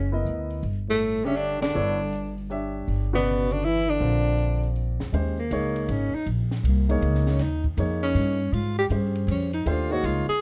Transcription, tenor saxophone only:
Already playing: C#4
0.90 A3
1.25 C#4
1.37 D4
1.62 D4
3.15 B3
3.52 D4
3.64 E4
3.90 D4
5.39 A#3
5.90 C#4
6.15 D#4
6.68 A#3
7.28 C#4
7.42 D#4
8.03 C#4
8.53 F4
8.79 G4
9.30 C#4
9.54 D#4
9.67 F4
9.92 F#4
10.06 F4
10.29 G#4

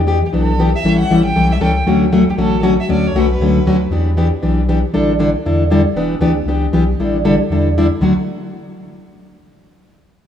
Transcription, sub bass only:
Already playing: E2
0.33 B1
0.83 A1
1.10 A1
1.36 B1
1.60 C#2
1.86 D2
2.38 A1
2.89 D2
3.14 B1
3.39 C#2
3.66 D2
3.91 E2
4.43 B1
4.95 A1
5.46 E2
5.95 E1
6.20 D2
6.45 C#2
6.72 B1
6.98 A1
7.50 E2
8.00 D2

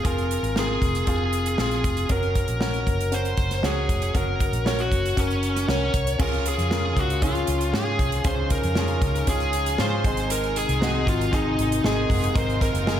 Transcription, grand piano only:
Already playing: C4 F4 G#4
0.03 C4 F4 G#4
0.56 C4 F4 A#4
1.07 C4 F4 G#4
1.58 C4 F4 G#4
2.09 C#4 F#4 A#4
2.60 C#4 F#4 A#4
3.12 C#4 F#4 A#4
3.63 C#4 F#4 C#5
4.14 C#4 F#4 A#4
4.66 C#4 F#4 C#5
5.17 C#4 F#4 A#4
5.68 C#4 F#4 A#4
6.19 C#3 C#4 F4 G#4
6.71 C#4 F4 A#4
7.23 C#4 F4 G#4
7.73 C#4 F4 G#4
8.24 C#3 C#4 F4 G#4
8.76 C#4 F4 G#4
9.27 C#4 F4 G#4
9.79 C#4 F4 G#4
10.04 G#2 C4 D#4 G#4
10.81 C4 D#4 F#4
11.31 C4 D#4 G#4
11.84 C4 D#4 G#4
12.10 G#2
12.35 C4 D#4 A#4
12.86 C4 D#4 G#4

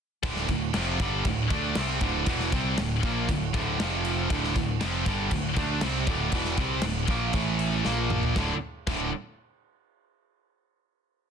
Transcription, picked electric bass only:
0.23 D1
0.48 D1
0.75 F1
1.00 G1
1.25 D1
1.50 D2
1.76 C2
2.02 D1
2.27 E1
2.52 C2
2.79 D1
3.03 A#1
3.28 D1
3.54 D1
3.80 F1
4.30 D1
4.56 D1
4.81 F1
5.06 G1
5.31 D1
5.57 D2
5.82 C2
6.07 D1
6.32 E1
6.58 C2
6.83 D1
7.08 A#1
7.34 A1
7.86 A#1
8.36 D1
8.87 D1

